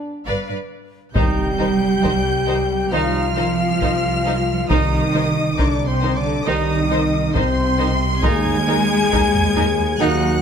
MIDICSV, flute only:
0, 0, Header, 1, 2, 480
1, 0, Start_track
1, 0, Key_signature, -3, "minor"
1, 0, Tempo, 885609
1, 629, Time_signature, 4, 2, 24, 8
1, 5647, End_track
2, 0, Start_track
2, 0, Title_t, "Flute"
2, 0, Program_c, 0, 73
2, 627, Note_on_c, 0, 79, 64
2, 1585, Note_on_c, 0, 77, 75
2, 1594, Note_off_c, 0, 79, 0
2, 2544, Note_off_c, 0, 77, 0
2, 2547, Note_on_c, 0, 75, 64
2, 3019, Note_off_c, 0, 75, 0
2, 3028, Note_on_c, 0, 74, 55
2, 3185, Note_on_c, 0, 72, 56
2, 3193, Note_off_c, 0, 74, 0
2, 3345, Note_on_c, 0, 74, 54
2, 3353, Note_off_c, 0, 72, 0
2, 3505, Note_on_c, 0, 75, 64
2, 3513, Note_off_c, 0, 74, 0
2, 3985, Note_on_c, 0, 72, 58
2, 3993, Note_off_c, 0, 75, 0
2, 4315, Note_off_c, 0, 72, 0
2, 4464, Note_on_c, 0, 80, 93
2, 5424, Note_on_c, 0, 78, 76
2, 5432, Note_off_c, 0, 80, 0
2, 5647, Note_off_c, 0, 78, 0
2, 5647, End_track
0, 0, End_of_file